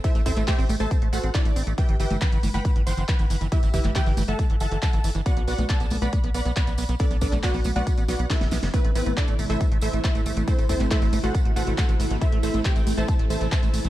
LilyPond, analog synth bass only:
\new Staff \with { instrumentName = "Analog synth bass" } { \clef bass \time 4/4 \key a \dorian \tempo 4 = 138 r16 a,,16 a,,16 a,,16 r16 a,,16 a,,16 a,,16 r16 a,,16 a,,16 a,,16 r16 a,,16 a,,16 a,,16 | r16 g,,16 g,,16 g,,16 r16 g,,16 g,,16 g,,16 r16 g,,16 g,,16 g,,16 r16 g,,16 g,,16 g,,16 | r16 g,,16 g,,16 g,,16 r16 g,,16 g,,16 g,,16 r16 g,,16 g,,16 g,,16 r16 g,,16 g,,16 g,,16 | r16 b,,16 b,,16 b,,16 r16 b,,16 b,,16 b,,16 r16 b,,16 b,,16 b,,16 r16 b,,16 b,,16 b,,16 |
r16 b,,16 b,,16 b,,16 r16 b,,16 b,,16 b,,16 r16 a,,16 b,,16 b,,16 r16 fis,,16 b,,16 fis,,16 | r16 a,,16 a,,16 a,,16 r16 a,,16 a,,16 a,,16 r16 a,,16 a,,16 a,,16 r16 a,,16 a,,16 a,,16 | r16 a,,16 a,,16 a,,16 r16 a,,16 a,,16 a,,16 r16 a,,16 a,,16 a,,16 r16 a,,16 a,,16 a,,16 | r16 a,,16 a,,16 a,,16 r16 a,,16 a,,16 a,,16 r16 a,,16 a,,16 a,,16 r16 a,,16 a,,16 a,,16 | }